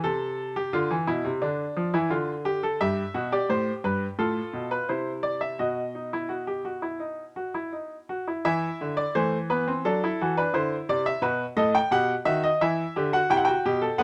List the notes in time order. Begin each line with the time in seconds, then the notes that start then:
0.04 C3 A4
0.56 G4
0.73 D3 F4
0.91 E3
1.07 B2 E4
1.25 C3
1.42 D3 D4
1.76 F3
1.94 E3 E4
2.10 D3 F4
2.45 G4
2.63 A4
2.81 G2 G4 E5
3.14 B2 F#4
3.32 G4 D5
3.50 A2 C5
3.84 G2 B4
4.19 A2 F4 A4
4.53 B2
4.71 B4
4.89 C3 E4 C5
5.23 D5
5.41 E5
5.59 B2 F#4 D#5
5.95 D#4
6.13 E4
6.29 F#4
6.47 G4
6.65 F#4
6.82 E4
7.00 D#4
7.36 F#4
7.54 E4
7.73 D#4
8.09 F#4
8.28 E4
8.45 E3 E4 E5
8.81 D3
8.97 D5
9.15 E3 A3 C5
9.50 B3 B4
9.68 C4
9.85 F#3 D4 A4
10.04 E4
10.21 E3 F#4
10.37 D4 B4
10.54 D3 E4 C5
10.89 C3 D5
11.06 E5
11.22 B2 F#4 B4
11.57 A2 A4 D#5
11.75 G5
11.91 B2 G4 F#5
12.25 D#3 F#4 E5
12.44 D#5
12.61 E3 E4 E5
12.96 D3 G4
13.13 F#4 F#5
13.30 C3 E4 G5
13.37 F#5
13.45 F#4 G5
13.65 B2 G4
13.82 A4
13.98 D3 B3 F#5